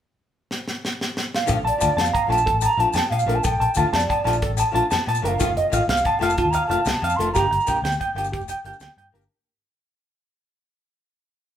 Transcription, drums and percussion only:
0.51 snare
0.68 snare
0.85 snare
1.01 snare
1.17 snare
1.34 snare
1.47 kick, closed hi-hat, low agogo, maracas
1.67 closed hi-hat
1.81 kick, closed hi-hat, low agogo, maracas
1.98 snare, closed hi-hat
2.05 maracas
2.14 kick, closed hi-hat, low agogo
2.30 closed hi-hat, low agogo
2.37 maracas
2.47 kick, closed hi-hat
2.61 closed hi-hat, low agogo, maracas
2.80 closed hi-hat
2.93 snare, closed hi-hat, low agogo, maracas
3.11 closed hi-hat, low agogo
3.19 maracas
3.29 closed hi-hat
3.43 kick, closed hi-hat, low agogo, maracas
3.61 closed hi-hat
3.75 kick, closed hi-hat, low agogo, maracas
3.94 snare, closed hi-hat
3.99 maracas
4.09 kick, closed hi-hat, low agogo
4.25 snare, closed hi-hat, low agogo
4.33 maracas
4.42 kick, closed hi-hat
4.57 closed hi-hat, low agogo, maracas
4.75 closed hi-hat
4.91 snare, closed hi-hat, low agogo, maracas
5.06 closed hi-hat, low agogo
5.15 maracas
5.25 closed hi-hat
5.40 kick, closed hi-hat, low agogo, maracas
5.57 closed hi-hat
5.72 kick, closed hi-hat, low agogo, maracas
5.89 snare, closed hi-hat
5.97 maracas
6.05 kick, closed hi-hat, low agogo
6.21 snare, closed hi-hat, low agogo
6.30 maracas
6.38 kick, closed hi-hat
6.53 closed hi-hat, low agogo, maracas
6.71 closed hi-hat
6.85 snare, closed hi-hat, low agogo, maracas
7.02 closed hi-hat, low agogo
7.10 maracas
7.20 closed hi-hat
7.35 kick, closed hi-hat, low agogo, maracas
7.52 closed hi-hat
7.60 maracas
7.67 kick, closed hi-hat, low agogo, maracas
7.85 snare, closed hi-hat, maracas
7.92 maracas
8.00 kick, closed hi-hat, low agogo, maracas
8.16 closed hi-hat, low agogo
8.24 maracas
8.33 kick, closed hi-hat
8.41 maracas
8.48 closed hi-hat, low agogo, maracas
8.65 closed hi-hat
8.73 maracas
8.80 snare, closed hi-hat, low agogo, maracas
8.98 closed hi-hat, low agogo
9.15 closed hi-hat
9.21 maracas

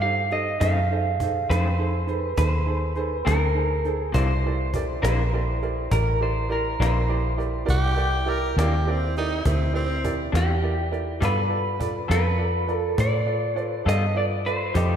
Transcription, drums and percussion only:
0.31 cajon slap
0.61 cajon bass
1.20 cajon bass
1.51 cajon slap
2.08 cajon slap
2.38 cajon bass
2.96 cajon slap
3.27 cajon slap
3.85 cajon slap
3.87 cajon slap
4.14 cajon bass
4.74 cajon bass
5.05 cajon slap
5.62 cajon slap
5.91 cajon bass
6.51 cajon slap
6.82 cajon slap
7.40 cajon slap
7.42 cajon slap
7.69 cajon bass
8.27 cajon slap
8.59 cajon slap
9.16 cajon slap
9.46 cajon bass
10.05 cajon bass
10.35 cajon slap
10.93 cajon slap
11.22 cajon bass
11.81 cajon bass
12.11 cajon slap
12.68 cajon slap
12.98 cajon bass
13.57 cajon slap
13.89 cajon slap
14.46 cajon slap
14.48 cajon slap
14.75 cajon bass

